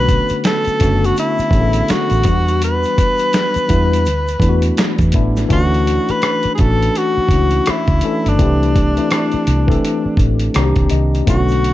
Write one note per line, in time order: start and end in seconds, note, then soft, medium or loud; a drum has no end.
0.00 0.19 B1 loud
0.00 0.64 D3 medium
0.00 0.65 A3 medium
0.00 0.65 B3 medium
0.00 0.65 C#4 medium
0.00 0.69 F#4 loud
0.00 0.42 B4 loud
0.09 kick medium
0.09 closed hi-hat medium
0.09 shaker soft
0.28 muted fingered electric bass stroke soft
0.28 closed hi-hat soft
0.28 shaker soft
0.44 1.07 A4 loud
0.44 finger snap medium
0.44 snare loud
0.44 closed hi-hat medium
0.44 shaker medium
0.65 muted fingered electric bass stroke soft
0.65 closed hi-hat soft
0.65 shaker medium
0.79 1.10 F#1 medium
0.79 1.42 D3 medium
0.79 1.43 A3 medium
0.79 1.43 B3 medium
0.79 1.43 C#4 medium
0.79 1.43 F#4 medium
0.79 kick medium
0.79 snare soft
0.79 closed hi-hat medium
0.79 shaker soft
1.04 1.18 F#4 medium
1.04 closed hi-hat soft
1.04 shaker soft
1.17 1.92 E4 medium
1.17 closed hi-hat medium
1.17 shaker medium
1.38 muted fingered electric bass stroke soft
1.38 closed hi-hat soft
1.38 shaker soft
1.51 1.81 A1 medium
1.51 2.24 D3 medium
1.51 2.25 A3 medium
1.51 2.24 B3 medium
1.51 2.26 C#4 medium
1.51 1.61 G#4 medium
1.51 kick medium
1.51 closed hi-hat medium
1.61 2.29 A4 medium
1.73 closed hi-hat medium
1.73 shaker soft
1.88 2.62 F#4 medium
1.88 finger snap medium
1.88 muted fingered electric bass stroke soft
1.88 snare medium
1.88 closed hi-hat medium
1.88 shaker medium
2.10 2.22 A1 medium
2.10 closed hi-hat soft
2.10 shaker soft
2.23 2.84 E2 medium
2.23 3.46 E3 medium
2.23 3.47 G3 medium
2.23 3.47 B3 medium
2.23 3.47 D4 medium
2.23 3.47 F#4 medium
2.23 kick loud
2.23 closed hi-hat medium
2.23 shaker soft
2.48 closed hi-hat soft
2.48 shaker soft
2.62 4.75 B4 loud
2.62 closed hi-hat medium
2.62 shaker medium
2.83 closed hi-hat soft
2.83 shaker soft
2.98 kick medium
2.98 closed hi-hat medium
2.98 shaker soft
3.18 closed hi-hat soft
3.18 shaker soft
3.33 finger snap medium
3.33 snare loud
3.33 closed hi-hat medium
3.33 shaker medium
3.54 muted fingered electric bass stroke soft
3.54 closed hi-hat soft
3.54 shaker medium
3.68 4.06 E2 medium
3.68 4.05 E3 medium
3.68 4.05 G3 medium
3.68 4.05 B3 medium
3.68 4.06 D4 medium
3.68 4.06 E4 medium
3.68 kick medium
3.68 closed hi-hat medium
3.68 shaker soft
3.93 closed hi-hat soft
3.93 shaker soft
4.06 4.35 D2 medium
4.06 closed hi-hat medium
4.06 shaker medium
4.28 closed hi-hat soft
4.28 shaker soft
4.40 4.70 E2 medium
4.40 5.03 E3 medium
4.40 5.04 A3 medium
4.40 5.04 B3 medium
4.40 5.04 D4 medium
4.40 4.50 E4 medium
4.40 kick medium
4.40 closed hi-hat medium
4.40 shaker soft
4.49 5.08 F#4 medium
4.62 closed hi-hat medium
4.62 shaker soft
4.77 finger snap medium
4.77 snare loud
4.77 closed hi-hat medium
4.77 shaker medium
4.98 5.11 E2 medium
4.98 kick medium
4.98 closed hi-hat soft
4.98 shaker soft
5.12 5.44 A1 medium
5.12 5.45 E3 medium
5.12 5.45 A3 medium
5.12 5.46 B3 medium
5.12 5.46 D4 medium
5.12 5.46 E4 medium
5.12 kick medium
5.12 closed hi-hat medium
5.37 snare soft
5.37 closed hi-hat soft
5.37 shaker soft
5.49 5.97 D2 loud
5.49 6.43 E3 medium
5.49 6.43 A3 medium
5.49 6.43 C#4 medium
5.49 6.44 D4 medium
5.49 6.44 F#4 medium
5.49 kick medium
5.49 closed hi-hat medium
5.53 6.13 F#4 medium
5.74 closed hi-hat soft
5.87 closed hi-hat medium
6.09 6.54 B4 loud
6.09 muted fingered electric bass stroke soft
6.09 closed hi-hat soft
6.22 cross-stick loud
6.22 closed hi-hat medium
6.43 muted fingered electric bass stroke soft
6.43 closed hi-hat soft
6.55 7.20 E3 medium
6.55 7.21 A3 medium
6.55 7.21 C#4 medium
6.55 6.63 G#4 medium
6.55 closed hi-hat medium
6.59 6.88 A1 medium
6.59 7.21 D4 medium
6.59 7.22 F#4 medium
6.59 6.99 A4 loud
6.59 kick medium
6.83 closed hi-hat soft
6.95 7.72 F#4 medium
6.95 closed hi-hat medium
7.17 muted fingered electric bass stroke soft
7.29 7.59 C#2 medium
7.29 7.94 E3 medium
7.29 7.94 A3 medium
7.29 kick medium
7.29 closed hi-hat medium
7.33 7.94 C#4 medium
7.33 7.94 D4 medium
7.33 7.95 E4 medium
7.51 closed hi-hat soft
7.66 muted fingered electric bass stroke soft
7.66 cross-stick loud
7.66 closed hi-hat medium
7.71 8.30 E4 medium
7.88 8.00 C#2 medium
7.88 kick medium
7.88 closed hi-hat soft
8.01 8.34 E3 medium
8.01 8.35 A3 medium
8.01 8.35 C#4 medium
8.01 closed hi-hat medium
8.05 8.35 D4 medium
8.05 8.35 A4 medium
8.26 8.37 G1 medium
8.26 10.44 D4 medium
8.26 closed hi-hat soft
8.39 8.98 C2 loud
8.39 8.86 E3 medium
8.39 8.86 A3 medium
8.39 8.86 C4 medium
8.39 8.87 D4 medium
8.39 8.87 G4 loud
8.39 kick loud
8.39 closed hi-hat medium
8.63 closed hi-hat soft
8.76 kick medium
8.76 closed hi-hat medium
8.96 9.54 E3 medium
8.96 9.54 A3 medium
8.96 9.54 C4 medium
8.96 9.55 D4 medium
8.96 9.55 E4 medium
8.96 closed hi-hat soft
9.11 cross-stick loud
9.11 closed hi-hat medium
9.32 muted fingered electric bass stroke soft
9.32 closed hi-hat soft
9.47 9.77 C2 medium
9.47 closed hi-hat medium
9.67 10.55 E3 medium
9.67 10.55 A3 medium
9.67 10.54 C4 medium
9.67 10.55 D4 medium
9.67 10.56 A4 medium
9.67 kick medium
9.72 closed hi-hat soft
9.85 closed hi-hat medium
10.06 muted fingered electric bass stroke soft
10.17 10.48 A1 medium
10.17 kick medium
10.17 closed hi-hat medium
10.39 closed hi-hat medium
10.54 10.74 C2 medium
10.54 11.18 D#3 medium
10.54 11.18 A#3 medium
10.54 11.18 C4 medium
10.54 11.19 D4 medium
10.54 10.64 F#4 medium
10.54 10.89 A#5 medium
10.54 cross-stick loud
10.54 closed hi-hat medium
10.63 11.22 G4 loud
10.76 10.89 C2 medium
10.76 kick medium
10.76 closed hi-hat soft
10.90 11.21 C2 medium
10.90 11.25 D#5 medium
10.90 closed hi-hat medium
11.15 closed hi-hat soft
11.27 11.73 B1 loud
11.27 11.73 D3 medium
11.27 11.73 A3 medium
11.27 11.73 B3 medium
11.27 11.73 C#4 medium
11.27 11.36 E4 medium
11.27 11.73 F#4 medium
11.27 kick medium
11.27 closed hi-hat medium
11.27 shaker medium
11.35 11.73 F#4 loud
11.48 closed hi-hat soft
11.48 shaker soft
11.64 closed hi-hat medium